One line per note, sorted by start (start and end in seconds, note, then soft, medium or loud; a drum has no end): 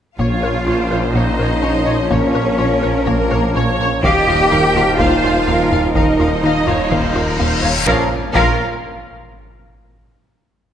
0.18 0.26 A#1 soft
0.18 4.06 A#1 medium
0.18 3.99 A#2 soft
0.18 0.34 A#2 medium
0.18 3.98 F3 medium
0.18 0.34 A#3 medium
0.18 3.99 A#3 medium
0.18 3.99 C#4 medium
0.18 1.11 F4 medium
0.18 0.28 C#5 soft
0.18 0.65 C#5 soft
0.18 1.11 F5 medium
0.18 taiko medium
0.42 0.50 A#1 soft
0.42 0.58 A#2 soft
0.42 0.58 A#4 soft
0.42 0.51 C#5 soft
0.67 0.75 A#1 soft
0.67 0.82 A#3 medium
0.67 0.82 F4 medium
0.67 2.09 C5 medium
0.67 0.77 C#5 soft
0.91 0.99 A#1 soft
0.91 1.06 A#2 medium
0.91 1.06 A#4 soft
0.91 1.00 C#5 soft
1.14 1.22 A#1 medium
1.14 1.30 A#2 medium
1.14 1.30 A#3 medium
1.14 2.11 D#4 medium
1.14 1.24 C#5 soft
1.14 2.09 D#5 medium
1.39 1.47 A#1 soft
1.39 1.54 A#2 medium
1.39 1.53 A#4 soft
1.39 1.49 C#5 soft
1.63 1.71 A#1 medium
1.63 1.77 A#2 medium
1.63 1.77 C#4 medium
1.63 1.71 C#5 soft
1.86 1.95 A#1 soft
1.86 2.02 A#2 soft
1.86 1.94 C#5 medium
2.10 2.19 A#1 medium
2.10 2.26 A#2 medium
2.10 2.25 A#3 medium
2.10 3.05 C#4 medium
2.10 2.58 A#4 soft
2.10 3.07 C#5 medium
2.10 2.20 C#5 soft
2.10 taiko medium
2.35 2.43 A#1 medium
2.35 2.50 A#2 medium
2.35 2.49 A#4 medium
2.35 2.43 C#5 medium
2.58 2.67 A#1 medium
2.58 2.74 A#3 medium
2.58 2.73 F4 medium
2.58 3.53 A#4 medium
2.58 2.67 C#5 medium
2.82 2.91 A#1 medium
2.82 2.98 A#2 medium
2.82 2.97 A#4 medium
2.82 2.90 C#5 medium
3.05 3.15 A#1 medium
3.05 3.22 A#2 medium
3.05 3.79 A#3 medium
3.05 3.21 A#3 medium
3.05 3.79 A#4 medium
3.05 3.13 C#5 soft
3.05 taiko medium
3.31 3.39 A#1 medium
3.31 3.46 A#2 medium
3.31 3.46 A#4 medium
3.31 3.39 C#5 medium
3.55 3.63 A#1 medium
3.55 3.69 A#2 medium
3.55 3.70 C#4 medium
3.55 4.02 C#5 medium
3.55 3.64 C#5 medium
3.79 3.87 A#1 medium
3.79 3.93 A#2 medium
3.79 3.89 C#5 medium
4.02 7.88 D#1 medium
4.02 4.11 D#2 medium
4.02 4.18 D#2 medium
4.02 7.59 A#2 medium
4.02 4.18 D#3 medium
4.02 7.59 F3 medium
4.02 7.59 A#3 medium
4.02 7.63 D#4 medium
4.02 4.95 G4 loud
4.02 4.50 D#5 medium
4.02 4.13 F5 medium
4.02 4.95 G5 medium
4.02 taiko medium
4.27 4.35 D#2 medium
4.27 4.42 D#2 medium
4.27 4.42 F4 medium
4.27 4.36 F5 medium
4.51 4.60 D#2 medium
4.51 4.66 D#3 medium
4.51 4.66 D#4 medium
4.51 4.99 A#4 medium
4.51 4.60 F5 medium
4.75 4.83 D#2 medium
4.75 4.90 D#2 medium
4.75 4.90 F4 medium
4.75 4.85 F5 medium
4.75 taiko low-mid soft
4.99 5.14 D#2 loud
4.99 5.08 D#2 medium
4.99 5.14 D#3 medium
4.99 5.95 F4 medium
4.99 5.47 C5 medium
4.99 5.95 F5 medium
4.99 5.08 F5 medium
4.99 taiko medium
5.23 5.38 D#2 medium
5.23 5.32 D#2 medium
5.23 5.38 F4 medium
5.23 5.32 F5 medium
5.46 5.56 D#2 medium
5.46 5.62 D#2 medium
5.46 5.62 A#3 medium
5.46 5.94 A#4 medium
5.46 5.54 F5 medium
5.46 taiko low-mid medium
5.71 5.79 D#2 medium
5.71 5.86 D#2 medium
5.71 5.80 F5 medium
5.71 taiko low-mid soft
5.95 6.03 D#2 medium
5.95 6.10 D#2 medium
5.95 6.10 D#3 loud
5.95 7.60 D#4 medium
5.95 6.37 A#4 medium
5.95 7.60 D#5 medium
5.95 6.04 F5 medium
5.95 taiko medium
5.95 reverse cymbal medium
6.19 6.27 D#2 medium
6.19 6.34 D#2 medium
6.19 6.34 F4 medium
6.19 6.28 F5 soft
6.43 6.51 D#2 medium
6.43 6.58 D#3 medium
6.43 6.58 D#4 medium
6.43 6.66 D#5 medium
6.43 6.53 F5 medium
6.67 6.76 D#2 medium
6.67 6.82 D#2 medium
6.67 6.82 F4 medium
6.67 6.92 C#5 medium
6.67 6.75 F5 soft
6.67 taiko low-mid medium
6.91 6.99 D#2 medium
6.91 7.06 D#2 loud
6.91 7.06 D#3 medium
6.91 7.16 C5 medium
6.91 6.99 F5 medium
6.91 taiko medium
7.15 7.23 D#2 medium
7.15 7.30 D#2 medium
7.15 7.30 F4 medium
7.15 7.40 A#4 medium
7.15 7.24 F5 soft
7.39 7.54 D#2 medium
7.39 7.48 D#2 medium
7.39 7.54 A#3 medium
7.39 7.63 C5 medium
7.39 7.47 F5 medium
7.39 taiko low-mid medium
7.63 7.71 D#2 medium
7.63 7.79 D#2 medium
7.63 7.87 C#5 medium
7.63 7.72 F5 medium
7.63 taiko low-mid medium
7.86 8.01 A#1 medium
7.86 8.01 A#1 loud
7.86 8.07 A#2 medium
7.86 8.07 F3 medium
7.86 8.07 A#3 medium
7.86 8.07 C#4 medium
7.86 8.01 C#4 medium
7.86 8.01 F4 medium
7.86 8.00 A#4 medium
7.86 8.01 F5 medium
7.86 taiko loud
7.86 impact medium
8.35 8.62 A#1 loud
8.35 8.62 C#4 medium
8.35 8.62 F4 medium
8.35 8.62 A#4 loud
8.35 8.62 A#4 medium
8.35 8.62 F5 medium
8.35 taiko loud